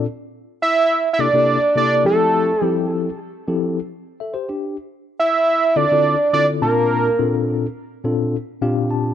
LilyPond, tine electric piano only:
\new Staff \with { instrumentName = "Tine electric piano" } { \time 4/4 \key f \major \tempo 4 = 105 << { r1 | r2. r16 <a' e''>16 <g' c''>16 <d' g'>16~ | <d' g'>16 r2. r8. | r2. f''8 a''8 | } \\ { r2 <c bes d' e' g' a'>16 <c bes d' e' g' a'>8 r16 <c bes d' e' g' a'>8 <f c' e' g' a'>8~ | <f c' e' g' a'>16 r16 <f c' e' g' a'>8. r8. <f c' e' g' a'>8 r4. | r2 <d c' e' f' a'>16 <d c' e' f' a'>8 r16 <d c' e' f' a'>8 <bes, c' d' f' a''>8~ | <bes, c' d' f' a''>16 r16 <bes, c' d' f' a'>8. r8. <bes, c' d' f' a'>8 r8 <bes, c' d' f' g'>4 | } >> }